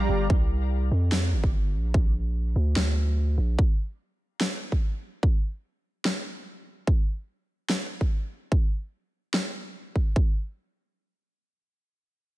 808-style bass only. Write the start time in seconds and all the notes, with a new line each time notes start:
0.09 G1
0.30 C2
0.91 F2
1.32 G1
1.74 A#1
2.56 D2
2.76 D2
3.38 A#1